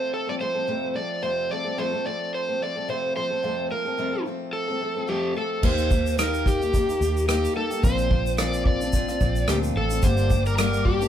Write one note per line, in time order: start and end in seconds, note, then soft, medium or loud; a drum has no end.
0.00 0.27 F3 soft
0.00 0.28 A3 medium
0.00 0.27 C4 medium
0.00 0.26 A4 medium
0.00 0.11 C5 medium
0.14 0.27 A4 medium
0.27 0.38 F3 soft
0.27 0.39 A3 soft
0.27 0.40 C4 soft
0.27 0.40 A4 soft
0.27 0.34 D5 medium
0.40 0.55 F3 soft
0.40 0.55 A3 soft
0.40 0.54 C4 soft
0.40 0.53 A4 medium
0.40 0.97 C5 medium
0.54 0.67 F3 soft
0.54 0.67 A3 soft
0.54 0.68 C4 soft
0.54 0.67 A4 soft
0.67 0.95 F2 medium
0.67 0.95 C3 medium
0.67 0.94 F3 medium
0.67 0.94 A3 medium
0.67 0.96 C4 medium
0.67 0.96 A4 medium
0.95 1.22 F3 medium
0.95 1.22 A3 soft
0.95 1.23 C4 medium
0.95 1.23 A4 medium
0.95 1.21 D5 medium
1.22 1.50 F2 medium
1.22 1.50 C3 medium
1.22 1.48 F3 medium
1.22 1.49 A3 medium
1.22 1.51 C4 medium
1.22 1.51 A4 medium
1.22 1.51 C5 medium
1.49 1.65 F3 soft
1.49 1.65 A3 medium
1.49 1.65 C4 medium
1.49 1.63 A4 medium
1.49 1.79 D5 medium
1.65 1.77 F3 soft
1.65 1.78 A3 soft
1.65 1.78 C4 soft
1.65 1.77 A4 soft
1.78 1.93 F2 medium
1.78 1.93 C3 medium
1.78 1.93 F3 medium
1.78 1.93 A3 medium
1.78 1.92 C4 medium
1.78 1.91 A4 medium
1.78 2.06 C5 medium
1.92 2.03 F3 soft
1.92 2.04 A3 soft
1.92 2.05 C4 soft
1.92 2.05 A4 soft
2.05 2.48 F3 soft
2.05 2.48 A3 soft
2.05 2.48 C4 medium
2.05 2.47 A4 medium
2.05 2.31 D5 medium
2.34 2.62 C5 medium
2.48 2.59 F3 soft
2.48 2.61 A3 soft
2.48 2.61 C4 soft
2.48 2.60 A4 soft
2.60 2.75 F3 soft
2.60 2.76 A3 medium
2.60 2.75 C4 soft
2.60 2.74 A4 medium
2.60 2.87 D5 medium
2.75 2.88 F3 soft
2.75 2.88 A3 soft
2.75 2.88 C4 soft
2.75 2.88 A4 soft
2.88 3.15 F2 medium
2.88 3.16 C3 medium
2.88 3.14 F3 medium
2.88 3.15 A3 medium
2.88 3.16 C4 medium
2.88 3.16 A4 medium
2.88 3.15 C5 medium
3.15 3.30 F3 medium
3.15 3.31 A3 medium
3.15 3.30 C4 soft
3.15 3.29 A4 medium
3.15 3.67 C5 medium
3.30 3.43 F3 soft
3.30 3.43 A3 soft
3.30 3.43 C4 soft
3.30 3.43 A4 soft
3.43 3.70 F2 medium
3.43 3.71 C3 medium
3.43 3.69 F3 medium
3.43 3.70 A3 medium
3.43 3.71 C4 medium
3.43 3.72 A4 medium
3.70 3.85 F3 soft
3.70 3.86 A3 soft
3.70 3.85 C4 soft
3.70 3.84 A4 medium
3.70 4.22 A#4 medium
3.85 3.97 F3 soft
3.85 3.98 A3 soft
3.85 3.98 C4 soft
3.85 3.98 A4 soft
3.97 4.13 F2 medium
3.97 4.13 C3 medium
3.97 4.13 F3 medium
3.97 4.14 A3 medium
3.97 4.12 C4 medium
3.97 4.11 A4 medium
4.13 4.24 F3 soft
4.13 4.25 A3 soft
4.13 4.26 C4 soft
4.13 4.25 A4 soft
4.25 4.68 F3 soft
4.25 4.69 A3 medium
4.25 4.68 C4 medium
4.25 4.67 A4 medium
4.53 5.32 A4 medium
4.68 4.79 F3 soft
4.68 4.80 A3 soft
4.68 4.81 C4 soft
4.68 4.80 A4 soft
4.80 4.95 F3 soft
4.80 4.96 A3 medium
4.80 4.95 C4 medium
4.80 4.94 A4 medium
4.95 5.07 F3 soft
4.95 5.07 A3 soft
4.95 5.08 C4 soft
4.95 5.08 A4 soft
5.07 5.35 F2 medium
5.07 5.36 C3 medium
5.07 5.33 F3 medium
5.07 5.34 A3 medium
5.07 5.35 C4 medium
5.07 5.37 G4 medium
5.07 5.36 A4 medium
5.34 5.62 F3 medium
5.34 5.63 A3 medium
5.34 5.64 C4 medium
5.34 5.64 A4 medium
5.34 5.65 A4 medium
5.63 6.97 D#2 loud
5.63 5.89 D#3 medium
5.63 5.90 A#3 medium
5.63 5.91 D#4 medium
5.63 5.92 G4 medium
5.63 6.19 C5 medium
5.63 kick loud
5.63 crash loud
5.78 shaker soft
5.90 6.16 D#3 soft
5.90 6.17 A#3 medium
5.90 6.18 D#4 medium
5.90 6.18 G4 medium
5.90 kick medium
5.90 shaker soft
6.06 shaker soft
6.17 6.60 D#3 medium
6.17 6.61 A#3 medium
6.17 6.60 D#4 medium
6.17 6.59 G4 medium
6.17 6.47 A#4 medium
6.17 cross-stick loud
6.17 shaker medium
6.34 shaker soft
6.46 7.25 G4 medium
6.46 kick medium
6.46 shaker soft
6.60 6.72 A#3 soft
6.60 6.73 D#4 soft
6.60 6.73 G4 medium
6.60 shaker soft
6.72 6.88 D#3 medium
6.72 6.88 A#3 medium
6.72 6.87 D#4 medium
6.72 6.86 G4 medium
6.72 kick medium
6.72 shaker medium
6.87 6.99 A#3 soft
6.87 7.00 D#4 soft
6.87 7.00 G4 medium
6.87 shaker soft
6.99 7.46 D#2 medium
6.99 7.27 D#3 soft
6.99 7.27 A#3 soft
6.99 7.28 D#4 medium
6.99 7.28 G4 medium
6.99 shaker soft
7.17 shaker soft
7.28 7.53 D#3 medium
7.28 7.54 A#3 medium
7.28 7.56 D#4 medium
7.28 7.56 G4 medium
7.28 7.57 G4 medium
7.28 cross-stick loud
7.28 shaker medium
7.45 shaker soft
7.55 7.70 D#3 medium
7.55 7.71 A#3 medium
7.55 7.71 D#4 medium
7.55 7.69 G4 medium
7.55 7.82 A4 medium
7.70 7.84 A#3 soft
7.70 7.84 D#4 soft
7.70 7.83 G4 soft
7.70 shaker soft
7.83 9.17 A#1 loud
7.83 8.11 A#2 medium
7.83 8.09 F3 medium
7.83 8.10 C4 medium
7.83 8.11 D4 medium
7.83 8.12 F4 medium
7.83 8.35 C5 loud
7.83 kick loud
7.83 shaker medium
7.98 shaker soft
8.10 8.37 F3 medium
8.10 8.38 C4 medium
8.10 8.38 D4 medium
8.10 8.39 F4 medium
8.10 kick medium
8.26 shaker soft
8.38 8.81 A#2 medium
8.38 8.81 F3 medium
8.38 8.81 C4 medium
8.38 8.82 D4 medium
8.38 8.80 F4 medium
8.38 8.66 D5 medium
8.38 cross-stick loud
8.38 shaker medium
8.53 shaker soft
8.66 9.51 D5 loud
8.66 kick medium
8.81 8.93 C4 soft
8.81 8.94 D4 medium
8.81 8.93 F4 soft
8.81 shaker soft
8.93 9.08 F3 medium
8.93 9.09 C4 medium
8.93 9.09 D4 medium
8.93 9.07 F4 medium
8.93 kick medium
8.93 shaker medium
9.08 9.20 C4 soft
9.08 9.21 D4 soft
9.08 9.21 F4 soft
9.08 cross-stick soft
9.08 shaker soft
9.21 9.43 A#1 medium
9.21 9.47 F3 medium
9.21 9.48 C4 medium
9.21 9.48 D4 soft
9.21 9.49 F4 medium
9.21 kick medium
9.21 shaker soft
9.36 shaker soft
9.48 9.71 D2 medium
9.48 9.76 A#2 medium
9.48 9.74 F3 medium
9.48 9.75 C4 medium
9.48 9.76 D4 medium
9.48 9.77 F4 medium
9.48 9.56 G4 medium
9.48 cross-stick loud
9.48 shaker medium
9.63 shaker soft
9.75 9.98 A1 medium
9.75 9.91 F3 medium
9.75 9.91 C4 medium
9.75 9.90 D4 medium
9.75 9.89 F4 medium
9.75 10.05 A4 medium
9.90 10.04 C4 soft
9.90 10.03 D4 soft
9.90 10.03 F4 soft
9.90 shaker medium
10.03 11.08 G1 loud
10.03 10.31 G2 medium
10.03 10.31 D3 medium
10.03 10.29 G3 medium
10.03 10.30 A#3 medium
10.03 10.31 D4 medium
10.03 10.32 G4 medium
10.03 11.08 A#4 medium
10.03 10.46 C5 loud
10.03 11.08 D5 medium
10.03 11.08 G5 medium
10.03 11.08 D6 medium
10.03 kick loud
10.03 shaker medium
10.17 shaker soft
10.30 10.57 G3 medium
10.30 10.58 A#3 medium
10.30 10.58 D4 medium
10.30 10.58 G4 medium
10.30 kick medium
10.30 shaker soft
10.46 10.57 A#4 loud
10.46 shaker soft
10.58 11.01 G2 medium
10.58 11.01 D3 medium
10.58 11.01 G3 medium
10.58 11.01 A#3 medium
10.58 11.00 D4 medium
10.58 10.99 G4 medium
10.58 10.84 A#4 medium
10.58 cross-stick loud
10.58 shaker medium
10.73 shaker soft
10.85 11.08 G4 medium
10.85 kick medium
11.00 11.08 G3 soft
11.00 11.08 A#3 soft
11.00 11.08 D4 medium
11.00 11.08 G4 medium
11.00 shaker soft